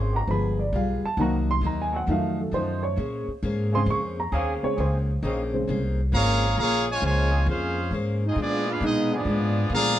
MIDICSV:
0, 0, Header, 1, 8, 480
1, 0, Start_track
1, 0, Key_signature, -5, "minor"
1, 0, Tempo, 449102
1, 1264, Time_signature, 4, 2, 24, 8
1, 10681, End_track
2, 0, Start_track
2, 0, Title_t, "Trumpet section"
2, 0, Program_c, 0, 61
2, 6567, Note_on_c, 0, 82, 120
2, 6569, Note_on_c, 0, 68, 105
2, 6570, Note_on_c, 0, 73, 107
2, 6570, Note_on_c, 0, 77, 98
2, 7003, Note_off_c, 0, 82, 0
2, 7004, Note_off_c, 0, 68, 0
2, 7004, Note_off_c, 0, 77, 0
2, 7005, Note_off_c, 0, 73, 0
2, 7048, Note_on_c, 0, 82, 118
2, 7049, Note_on_c, 0, 68, 105
2, 7052, Note_on_c, 0, 73, 99
2, 7057, Note_on_c, 0, 77, 104
2, 7339, Note_off_c, 0, 82, 0
2, 7340, Note_off_c, 0, 68, 0
2, 7341, Note_off_c, 0, 73, 0
2, 7344, Note_off_c, 0, 77, 0
2, 7396, Note_on_c, 0, 65, 91
2, 7397, Note_on_c, 0, 80, 107
2, 7399, Note_on_c, 0, 72, 85
2, 7399, Note_on_c, 0, 73, 90
2, 7528, Note_off_c, 0, 65, 0
2, 7528, Note_off_c, 0, 80, 0
2, 7529, Note_off_c, 0, 72, 0
2, 7529, Note_off_c, 0, 73, 0
2, 7547, Note_on_c, 0, 80, 93
2, 7548, Note_on_c, 0, 73, 86
2, 7550, Note_on_c, 0, 72, 83
2, 7557, Note_on_c, 0, 65, 73
2, 7973, Note_off_c, 0, 80, 0
2, 7974, Note_off_c, 0, 73, 0
2, 7975, Note_off_c, 0, 72, 0
2, 7978, Note_off_c, 0, 65, 0
2, 8016, Note_on_c, 0, 61, 71
2, 8019, Note_on_c, 0, 68, 73
2, 8019, Note_on_c, 0, 72, 77
2, 8021, Note_on_c, 0, 77, 81
2, 8479, Note_off_c, 0, 61, 0
2, 8481, Note_off_c, 0, 68, 0
2, 8481, Note_off_c, 0, 72, 0
2, 8481, Note_off_c, 0, 77, 0
2, 8844, Note_on_c, 0, 65, 64
2, 8846, Note_on_c, 0, 75, 81
2, 8850, Note_on_c, 0, 68, 72
2, 8856, Note_on_c, 0, 60, 64
2, 8962, Note_off_c, 0, 65, 0
2, 8963, Note_off_c, 0, 75, 0
2, 8965, Note_off_c, 0, 68, 0
2, 8968, Note_off_c, 0, 60, 0
2, 9002, Note_on_c, 0, 59, 87
2, 9003, Note_on_c, 0, 74, 109
2, 9006, Note_on_c, 0, 65, 89
2, 9007, Note_on_c, 0, 68, 83
2, 9296, Note_off_c, 0, 59, 0
2, 9297, Note_off_c, 0, 74, 0
2, 9299, Note_off_c, 0, 65, 0
2, 9299, Note_off_c, 0, 68, 0
2, 9322, Note_on_c, 0, 71, 80
2, 9322, Note_on_c, 0, 77, 86
2, 9325, Note_on_c, 0, 62, 80
2, 9329, Note_on_c, 0, 68, 73
2, 9449, Note_off_c, 0, 71, 0
2, 9449, Note_off_c, 0, 77, 0
2, 9451, Note_off_c, 0, 62, 0
2, 9453, Note_off_c, 0, 68, 0
2, 9466, Note_on_c, 0, 59, 81
2, 9470, Note_on_c, 0, 68, 79
2, 9473, Note_on_c, 0, 65, 77
2, 9475, Note_on_c, 0, 75, 100
2, 9747, Note_off_c, 0, 59, 0
2, 9749, Note_off_c, 0, 68, 0
2, 9750, Note_off_c, 0, 65, 0
2, 9752, Note_off_c, 0, 75, 0
2, 9797, Note_on_c, 0, 65, 85
2, 9800, Note_on_c, 0, 59, 93
2, 9800, Note_on_c, 0, 74, 97
2, 9804, Note_on_c, 0, 68, 84
2, 10395, Note_off_c, 0, 74, 0
2, 10405, Note_off_c, 0, 65, 0
2, 10406, Note_off_c, 0, 59, 0
2, 10408, Note_off_c, 0, 68, 0
2, 10408, Note_on_c, 0, 74, 103
2, 10413, Note_on_c, 0, 82, 127
2, 10414, Note_on_c, 0, 77, 110
2, 10420, Note_on_c, 0, 68, 100
2, 10681, Note_off_c, 0, 68, 0
2, 10681, Note_off_c, 0, 74, 0
2, 10681, Note_off_c, 0, 77, 0
2, 10681, Note_off_c, 0, 82, 0
2, 10681, End_track
3, 0, Start_track
3, 0, Title_t, "Upright piano"
3, 0, Program_c, 1, 0
3, 0, Note_on_c, 1, 49, 47
3, 0, Note_on_c, 1, 56, 44
3, 0, Note_on_c, 1, 60, 54
3, 0, Note_on_c, 1, 84, 70
3, 155, Note_off_c, 1, 84, 0
3, 174, Note_on_c, 1, 82, 86
3, 267, Note_off_c, 1, 49, 0
3, 273, Note_off_c, 1, 56, 0
3, 275, Note_off_c, 1, 60, 0
3, 301, Note_on_c, 1, 53, 53
3, 312, Note_off_c, 1, 82, 0
3, 314, Note_on_c, 1, 56, 43
3, 321, Note_on_c, 1, 59, 57
3, 328, Note_on_c, 1, 83, 86
3, 632, Note_off_c, 1, 83, 0
3, 634, Note_on_c, 1, 74, 63
3, 670, Note_off_c, 1, 53, 0
3, 677, Note_off_c, 1, 56, 0
3, 681, Note_off_c, 1, 59, 0
3, 782, Note_off_c, 1, 74, 0
3, 809, Note_on_c, 1, 77, 70
3, 1112, Note_off_c, 1, 77, 0
3, 1127, Note_on_c, 1, 81, 92
3, 1268, Note_on_c, 1, 54, 45
3, 1269, Note_off_c, 1, 81, 0
3, 1269, Note_on_c, 1, 51, 48
3, 1275, Note_on_c, 1, 58, 53
3, 1292, Note_on_c, 1, 82, 77
3, 1594, Note_off_c, 1, 82, 0
3, 1611, Note_on_c, 1, 84, 101
3, 1751, Note_off_c, 1, 84, 0
3, 1779, Note_on_c, 1, 82, 74
3, 1917, Note_off_c, 1, 82, 0
3, 1941, Note_on_c, 1, 80, 85
3, 2078, Note_off_c, 1, 80, 0
3, 2098, Note_on_c, 1, 78, 82
3, 2184, Note_off_c, 1, 54, 0
3, 2185, Note_off_c, 1, 51, 0
3, 2188, Note_off_c, 1, 58, 0
3, 2236, Note_on_c, 1, 51, 48
3, 2237, Note_off_c, 1, 78, 0
3, 2240, Note_on_c, 1, 54, 51
3, 2243, Note_on_c, 1, 57, 59
3, 2258, Note_on_c, 1, 77, 78
3, 2558, Note_off_c, 1, 77, 0
3, 2574, Note_on_c, 1, 69, 55
3, 2713, Note_off_c, 1, 69, 0
3, 2717, Note_on_c, 1, 72, 83
3, 3024, Note_on_c, 1, 73, 78
3, 3027, Note_off_c, 1, 72, 0
3, 3149, Note_off_c, 1, 51, 0
3, 3150, Note_off_c, 1, 54, 0
3, 3152, Note_off_c, 1, 57, 0
3, 3474, Note_off_c, 1, 73, 0
3, 3994, Note_on_c, 1, 49, 51
3, 4007, Note_on_c, 1, 84, 99
3, 4009, Note_on_c, 1, 56, 49
3, 4010, Note_on_c, 1, 60, 64
3, 4150, Note_off_c, 1, 84, 0
3, 4174, Note_on_c, 1, 85, 97
3, 4263, Note_off_c, 1, 49, 0
3, 4271, Note_off_c, 1, 56, 0
3, 4272, Note_off_c, 1, 60, 0
3, 4476, Note_off_c, 1, 85, 0
3, 4487, Note_on_c, 1, 82, 79
3, 4630, Note_off_c, 1, 82, 0
3, 4644, Note_on_c, 1, 77, 80
3, 4946, Note_on_c, 1, 56, 45
3, 4951, Note_off_c, 1, 77, 0
3, 4951, Note_on_c, 1, 49, 52
3, 4956, Note_on_c, 1, 60, 60
3, 4960, Note_on_c, 1, 73, 92
3, 5088, Note_off_c, 1, 56, 0
3, 5090, Note_off_c, 1, 49, 0
3, 5093, Note_off_c, 1, 60, 0
3, 5106, Note_off_c, 1, 73, 0
3, 5133, Note_on_c, 1, 72, 63
3, 5320, Note_off_c, 1, 72, 0
3, 5913, Note_on_c, 1, 49, 54
3, 5922, Note_on_c, 1, 56, 49
3, 5923, Note_on_c, 1, 60, 67
3, 6182, Note_off_c, 1, 49, 0
3, 6187, Note_off_c, 1, 56, 0
3, 6188, Note_off_c, 1, 60, 0
3, 10681, End_track
4, 0, Start_track
4, 0, Title_t, "Steel-string acoustic guitar"
4, 0, Program_c, 2, 25
4, 0, Note_on_c, 2, 58, 64
4, 0, Note_on_c, 2, 61, 68
4, 0, Note_on_c, 2, 68, 75
4, 0, Note_on_c, 2, 72, 76
4, 166, Note_off_c, 2, 58, 0
4, 169, Note_off_c, 2, 61, 0
4, 172, Note_off_c, 2, 68, 0
4, 175, Note_off_c, 2, 72, 0
4, 305, Note_on_c, 2, 55, 51
4, 322, Note_on_c, 2, 65, 53
4, 329, Note_on_c, 2, 68, 54
4, 342, Note_on_c, 2, 71, 56
4, 645, Note_off_c, 2, 55, 0
4, 653, Note_off_c, 2, 65, 0
4, 657, Note_off_c, 2, 68, 0
4, 663, Note_off_c, 2, 71, 0
4, 789, Note_on_c, 2, 55, 63
4, 795, Note_on_c, 2, 65, 64
4, 806, Note_on_c, 2, 71, 72
4, 807, Note_on_c, 2, 68, 65
4, 1127, Note_off_c, 2, 55, 0
4, 1130, Note_off_c, 2, 65, 0
4, 1136, Note_off_c, 2, 68, 0
4, 1136, Note_off_c, 2, 71, 0
4, 1263, Note_on_c, 2, 48, 51
4, 1275, Note_on_c, 2, 58, 52
4, 1282, Note_on_c, 2, 63, 58
4, 1295, Note_on_c, 2, 66, 57
4, 1605, Note_off_c, 2, 48, 0
4, 1611, Note_off_c, 2, 58, 0
4, 1614, Note_off_c, 2, 63, 0
4, 1621, Note_off_c, 2, 66, 0
4, 1737, Note_on_c, 2, 48, 64
4, 1742, Note_on_c, 2, 58, 63
4, 1754, Note_on_c, 2, 63, 70
4, 1757, Note_on_c, 2, 66, 75
4, 2082, Note_off_c, 2, 48, 0
4, 2084, Note_off_c, 2, 58, 0
4, 2090, Note_off_c, 2, 63, 0
4, 2092, Note_off_c, 2, 66, 0
4, 2208, Note_on_c, 2, 53, 57
4, 2220, Note_on_c, 2, 57, 59
4, 2233, Note_on_c, 2, 63, 58
4, 2245, Note_on_c, 2, 66, 54
4, 2557, Note_off_c, 2, 53, 0
4, 2563, Note_off_c, 2, 57, 0
4, 2570, Note_off_c, 2, 63, 0
4, 2576, Note_off_c, 2, 66, 0
4, 2693, Note_on_c, 2, 53, 62
4, 2704, Note_on_c, 2, 57, 63
4, 2710, Note_on_c, 2, 63, 72
4, 2720, Note_on_c, 2, 66, 68
4, 3040, Note_off_c, 2, 53, 0
4, 3046, Note_off_c, 2, 57, 0
4, 3049, Note_off_c, 2, 63, 0
4, 3053, Note_off_c, 2, 66, 0
4, 3164, Note_on_c, 2, 58, 49
4, 3181, Note_on_c, 2, 61, 55
4, 3193, Note_on_c, 2, 68, 57
4, 3204, Note_on_c, 2, 72, 51
4, 3516, Note_off_c, 2, 58, 0
4, 3524, Note_off_c, 2, 61, 0
4, 3530, Note_off_c, 2, 68, 0
4, 3535, Note_off_c, 2, 72, 0
4, 3661, Note_on_c, 2, 58, 77
4, 3671, Note_on_c, 2, 61, 79
4, 3678, Note_on_c, 2, 68, 85
4, 3685, Note_on_c, 2, 72, 74
4, 4004, Note_off_c, 2, 58, 0
4, 4009, Note_off_c, 2, 61, 0
4, 4013, Note_off_c, 2, 68, 0
4, 4016, Note_off_c, 2, 72, 0
4, 4143, Note_on_c, 2, 58, 56
4, 4159, Note_on_c, 2, 61, 51
4, 4168, Note_on_c, 2, 68, 54
4, 4183, Note_on_c, 2, 72, 55
4, 4485, Note_off_c, 2, 58, 0
4, 4493, Note_off_c, 2, 61, 0
4, 4498, Note_off_c, 2, 68, 0
4, 4505, Note_off_c, 2, 72, 0
4, 4623, Note_on_c, 2, 58, 63
4, 4630, Note_on_c, 2, 61, 64
4, 4641, Note_on_c, 2, 68, 72
4, 4649, Note_on_c, 2, 72, 78
4, 4965, Note_off_c, 2, 58, 0
4, 4969, Note_off_c, 2, 61, 0
4, 4974, Note_off_c, 2, 68, 0
4, 4978, Note_off_c, 2, 72, 0
4, 5102, Note_on_c, 2, 58, 54
4, 5112, Note_on_c, 2, 61, 54
4, 5125, Note_on_c, 2, 68, 58
4, 5136, Note_on_c, 2, 72, 56
4, 5445, Note_off_c, 2, 58, 0
4, 5450, Note_off_c, 2, 61, 0
4, 5456, Note_off_c, 2, 68, 0
4, 5461, Note_off_c, 2, 72, 0
4, 5584, Note_on_c, 2, 58, 72
4, 5596, Note_on_c, 2, 61, 70
4, 5601, Note_on_c, 2, 68, 71
4, 5608, Note_on_c, 2, 72, 89
4, 5925, Note_off_c, 2, 58, 0
4, 5932, Note_off_c, 2, 61, 0
4, 5934, Note_off_c, 2, 68, 0
4, 5938, Note_off_c, 2, 72, 0
4, 6065, Note_on_c, 2, 58, 61
4, 6071, Note_on_c, 2, 61, 60
4, 6082, Note_on_c, 2, 68, 62
4, 6091, Note_on_c, 2, 72, 75
4, 6406, Note_off_c, 2, 58, 0
4, 6409, Note_off_c, 2, 61, 0
4, 6414, Note_off_c, 2, 68, 0
4, 6419, Note_off_c, 2, 72, 0
4, 6540, Note_on_c, 2, 58, 80
4, 6551, Note_on_c, 2, 61, 72
4, 6558, Note_on_c, 2, 68, 73
4, 6567, Note_on_c, 2, 72, 83
4, 6883, Note_off_c, 2, 58, 0
4, 6889, Note_off_c, 2, 61, 0
4, 6892, Note_off_c, 2, 68, 0
4, 6896, Note_off_c, 2, 72, 0
4, 7026, Note_on_c, 2, 58, 60
4, 7043, Note_on_c, 2, 61, 53
4, 7053, Note_on_c, 2, 68, 59
4, 7066, Note_on_c, 2, 72, 56
4, 7366, Note_off_c, 2, 58, 0
4, 7374, Note_off_c, 2, 61, 0
4, 7379, Note_off_c, 2, 68, 0
4, 7386, Note_off_c, 2, 72, 0
4, 7500, Note_on_c, 2, 58, 70
4, 7507, Note_on_c, 2, 61, 74
4, 7514, Note_on_c, 2, 68, 64
4, 7524, Note_on_c, 2, 72, 69
4, 7842, Note_off_c, 2, 58, 0
4, 7846, Note_off_c, 2, 61, 0
4, 7849, Note_off_c, 2, 68, 0
4, 7854, Note_off_c, 2, 72, 0
4, 7972, Note_on_c, 2, 58, 60
4, 7986, Note_on_c, 2, 61, 53
4, 7998, Note_on_c, 2, 68, 61
4, 8009, Note_on_c, 2, 72, 60
4, 8318, Note_off_c, 2, 58, 0
4, 8325, Note_off_c, 2, 61, 0
4, 8331, Note_off_c, 2, 68, 0
4, 8337, Note_off_c, 2, 72, 0
4, 8465, Note_on_c, 2, 58, 69
4, 8476, Note_on_c, 2, 61, 64
4, 8483, Note_on_c, 2, 68, 70
4, 8490, Note_on_c, 2, 72, 77
4, 8804, Note_off_c, 2, 58, 0
4, 8810, Note_off_c, 2, 61, 0
4, 8813, Note_off_c, 2, 68, 0
4, 8817, Note_off_c, 2, 72, 0
4, 8929, Note_on_c, 2, 46, 48
4, 8947, Note_on_c, 2, 56, 50
4, 8958, Note_on_c, 2, 59, 53
4, 8972, Note_on_c, 2, 62, 57
4, 9276, Note_off_c, 2, 46, 0
4, 9284, Note_off_c, 2, 56, 0
4, 9290, Note_off_c, 2, 59, 0
4, 9297, Note_off_c, 2, 62, 0
4, 9424, Note_on_c, 2, 46, 63
4, 9428, Note_on_c, 2, 56, 71
4, 9435, Note_on_c, 2, 59, 76
4, 9444, Note_on_c, 2, 62, 77
4, 9762, Note_off_c, 2, 46, 0
4, 9764, Note_off_c, 2, 56, 0
4, 9768, Note_off_c, 2, 59, 0
4, 9772, Note_off_c, 2, 62, 0
4, 9900, Note_on_c, 2, 46, 57
4, 9912, Note_on_c, 2, 56, 56
4, 9926, Note_on_c, 2, 59, 51
4, 9934, Note_on_c, 2, 62, 61
4, 10240, Note_off_c, 2, 46, 0
4, 10246, Note_off_c, 2, 56, 0
4, 10253, Note_off_c, 2, 59, 0
4, 10257, Note_off_c, 2, 62, 0
4, 10392, Note_on_c, 2, 46, 63
4, 10397, Note_on_c, 2, 56, 67
4, 10406, Note_on_c, 2, 59, 72
4, 10411, Note_on_c, 2, 62, 82
4, 10681, Note_off_c, 2, 46, 0
4, 10681, Note_off_c, 2, 56, 0
4, 10681, Note_off_c, 2, 59, 0
4, 10681, Note_off_c, 2, 62, 0
4, 10681, End_track
5, 0, Start_track
5, 0, Title_t, "Trombone section"
5, 0, Program_c, 3, 61
5, 118, Note_on_c, 3, 53, 84
5, 120, Note_on_c, 3, 56, 81
5, 121, Note_on_c, 3, 67, 96
5, 122, Note_on_c, 3, 59, 80
5, 234, Note_off_c, 3, 53, 0
5, 235, Note_off_c, 3, 56, 0
5, 236, Note_off_c, 3, 67, 0
5, 237, Note_off_c, 3, 59, 0
5, 1260, Note_on_c, 3, 51, 84
5, 1267, Note_on_c, 3, 60, 78
5, 1267, Note_on_c, 3, 66, 94
5, 1269, Note_on_c, 3, 58, 79
5, 1481, Note_off_c, 3, 51, 0
5, 1485, Note_off_c, 3, 66, 0
5, 1486, Note_off_c, 3, 58, 0
5, 1486, Note_off_c, 3, 60, 0
5, 2040, Note_on_c, 3, 57, 79
5, 2042, Note_on_c, 3, 51, 77
5, 2045, Note_on_c, 3, 54, 74
5, 2050, Note_on_c, 3, 60, 95
5, 2156, Note_off_c, 3, 57, 0
5, 2157, Note_off_c, 3, 51, 0
5, 2159, Note_off_c, 3, 54, 0
5, 2162, Note_off_c, 3, 60, 0
5, 3969, Note_on_c, 3, 68, 103
5, 3976, Note_on_c, 3, 60, 82
5, 3978, Note_on_c, 3, 58, 84
5, 3979, Note_on_c, 3, 49, 99
5, 4082, Note_off_c, 3, 68, 0
5, 4086, Note_off_c, 3, 60, 0
5, 4087, Note_off_c, 3, 58, 0
5, 4088, Note_off_c, 3, 49, 0
5, 4620, Note_on_c, 3, 58, 93
5, 4623, Note_on_c, 3, 68, 122
5, 4626, Note_on_c, 3, 49, 108
5, 4627, Note_on_c, 3, 60, 84
5, 4842, Note_off_c, 3, 58, 0
5, 4844, Note_off_c, 3, 68, 0
5, 4846, Note_off_c, 3, 49, 0
5, 4846, Note_off_c, 3, 60, 0
5, 5091, Note_on_c, 3, 58, 77
5, 5092, Note_on_c, 3, 49, 90
5, 5093, Note_on_c, 3, 60, 82
5, 5102, Note_on_c, 3, 68, 94
5, 5316, Note_off_c, 3, 58, 0
5, 5317, Note_off_c, 3, 49, 0
5, 5317, Note_off_c, 3, 60, 0
5, 5323, Note_off_c, 3, 68, 0
5, 5576, Note_on_c, 3, 60, 80
5, 5581, Note_on_c, 3, 63, 98
5, 5590, Note_on_c, 3, 58, 77
5, 5592, Note_on_c, 3, 49, 87
5, 5799, Note_off_c, 3, 60, 0
5, 5802, Note_off_c, 3, 63, 0
5, 5808, Note_off_c, 3, 58, 0
5, 5809, Note_off_c, 3, 49, 0
5, 7814, Note_on_c, 3, 58, 74
5, 7815, Note_on_c, 3, 49, 89
5, 7815, Note_on_c, 3, 68, 101
5, 7821, Note_on_c, 3, 60, 81
5, 7924, Note_off_c, 3, 58, 0
5, 7925, Note_off_c, 3, 49, 0
5, 7925, Note_off_c, 3, 68, 0
5, 7928, Note_off_c, 3, 60, 0
5, 9739, Note_on_c, 3, 50, 90
5, 9740, Note_on_c, 3, 59, 90
5, 9743, Note_on_c, 3, 68, 102
5, 9750, Note_on_c, 3, 58, 73
5, 9846, Note_off_c, 3, 50, 0
5, 9846, Note_off_c, 3, 59, 0
5, 9849, Note_off_c, 3, 68, 0
5, 9853, Note_off_c, 3, 58, 0
5, 10681, End_track
6, 0, Start_track
6, 0, Title_t, "Trombone section"
6, 0, Program_c, 4, 61
6, 6544, Note_on_c, 4, 49, 83
6, 6545, Note_on_c, 4, 53, 99
6, 6545, Note_on_c, 4, 58, 96
6, 6990, Note_off_c, 4, 49, 0
6, 6991, Note_off_c, 4, 53, 0
6, 6991, Note_off_c, 4, 58, 0
6, 7030, Note_on_c, 4, 53, 94
6, 7032, Note_on_c, 4, 49, 101
6, 7032, Note_on_c, 4, 58, 96
6, 7330, Note_off_c, 4, 53, 0
6, 7331, Note_off_c, 4, 49, 0
6, 7331, Note_off_c, 4, 58, 0
6, 7363, Note_on_c, 4, 53, 85
6, 7363, Note_on_c, 4, 56, 90
6, 7367, Note_on_c, 4, 49, 91
6, 7506, Note_off_c, 4, 56, 0
6, 7511, Note_off_c, 4, 53, 0
6, 7513, Note_off_c, 4, 49, 0
6, 7519, Note_on_c, 4, 56, 92
6, 7526, Note_on_c, 4, 49, 92
6, 7530, Note_on_c, 4, 53, 92
6, 7958, Note_off_c, 4, 56, 0
6, 7962, Note_off_c, 4, 49, 0
6, 7964, Note_off_c, 4, 53, 0
6, 7994, Note_on_c, 4, 65, 78
6, 7996, Note_on_c, 4, 61, 75
6, 7999, Note_on_c, 4, 56, 74
6, 8468, Note_off_c, 4, 65, 0
6, 8469, Note_off_c, 4, 61, 0
6, 8471, Note_off_c, 4, 56, 0
6, 8815, Note_on_c, 4, 63, 77
6, 8946, Note_off_c, 4, 63, 0
6, 8965, Note_on_c, 4, 53, 81
6, 8969, Note_on_c, 4, 62, 85
6, 8976, Note_on_c, 4, 56, 83
6, 9270, Note_off_c, 4, 56, 0
6, 9271, Note_off_c, 4, 62, 0
6, 9278, Note_off_c, 4, 53, 0
6, 9283, Note_on_c, 4, 56, 92
6, 9283, Note_on_c, 4, 62, 88
6, 9287, Note_on_c, 4, 65, 90
6, 9429, Note_off_c, 4, 56, 0
6, 9430, Note_off_c, 4, 62, 0
6, 9431, Note_off_c, 4, 65, 0
6, 9439, Note_on_c, 4, 63, 94
6, 9732, Note_off_c, 4, 63, 0
6, 9757, Note_on_c, 4, 53, 86
6, 9758, Note_on_c, 4, 56, 83
6, 9760, Note_on_c, 4, 62, 83
6, 10347, Note_off_c, 4, 53, 0
6, 10360, Note_on_c, 4, 53, 99
6, 10364, Note_on_c, 4, 50, 95
6, 10370, Note_on_c, 4, 58, 96
6, 10385, Note_off_c, 4, 56, 0
6, 10386, Note_off_c, 4, 62, 0
6, 10681, Note_off_c, 4, 50, 0
6, 10681, Note_off_c, 4, 53, 0
6, 10681, Note_off_c, 4, 58, 0
6, 10681, End_track
7, 0, Start_track
7, 0, Title_t, "Upright bass"
7, 0, Program_c, 5, 32
7, 0, Note_on_c, 5, 32, 90
7, 286, Note_off_c, 5, 32, 0
7, 293, Note_on_c, 5, 31, 91
7, 764, Note_off_c, 5, 31, 0
7, 776, Note_on_c, 5, 35, 93
7, 1082, Note_off_c, 5, 35, 0
7, 1250, Note_on_c, 5, 36, 104
7, 1714, Note_off_c, 5, 36, 0
7, 1720, Note_on_c, 5, 39, 93
7, 2198, Note_off_c, 5, 39, 0
7, 2217, Note_on_c, 5, 41, 95
7, 2680, Note_off_c, 5, 41, 0
7, 2686, Note_on_c, 5, 42, 84
7, 3161, Note_off_c, 5, 42, 0
7, 3177, Note_on_c, 5, 46, 91
7, 3483, Note_off_c, 5, 46, 0
7, 3662, Note_on_c, 5, 44, 96
7, 4120, Note_off_c, 5, 44, 0
7, 4127, Note_on_c, 5, 41, 104
7, 4602, Note_off_c, 5, 41, 0
7, 4617, Note_on_c, 5, 39, 97
7, 4923, Note_off_c, 5, 39, 0
7, 5106, Note_on_c, 5, 37, 96
7, 5572, Note_off_c, 5, 37, 0
7, 5585, Note_on_c, 5, 34, 99
7, 6051, Note_off_c, 5, 34, 0
7, 6079, Note_on_c, 5, 36, 103
7, 6538, Note_off_c, 5, 36, 0
7, 6549, Note_on_c, 5, 32, 104
7, 7013, Note_off_c, 5, 32, 0
7, 7029, Note_on_c, 5, 34, 101
7, 7492, Note_off_c, 5, 34, 0
7, 7502, Note_on_c, 5, 37, 106
7, 7968, Note_off_c, 5, 37, 0
7, 7976, Note_on_c, 5, 41, 107
7, 8444, Note_off_c, 5, 41, 0
7, 8452, Note_on_c, 5, 44, 90
7, 8922, Note_off_c, 5, 44, 0
7, 8933, Note_on_c, 5, 46, 93
7, 9402, Note_off_c, 5, 46, 0
7, 9411, Note_on_c, 5, 47, 101
7, 9880, Note_off_c, 5, 47, 0
7, 9886, Note_on_c, 5, 44, 91
7, 10358, Note_off_c, 5, 44, 0
7, 10363, Note_on_c, 5, 46, 96
7, 10681, Note_off_c, 5, 46, 0
7, 10681, End_track
8, 0, Start_track
8, 0, Title_t, "Muted upright bass strokes"
8, 1103, Note_on_c, 9, 29, 39
8, 1210, Note_off_c, 9, 29, 0
8, 3504, Note_on_c, 9, 29, 45
8, 3611, Note_off_c, 9, 29, 0
8, 4951, Note_on_c, 9, 29, 38
8, 5058, Note_off_c, 9, 29, 0
8, 10681, End_track
0, 0, End_of_file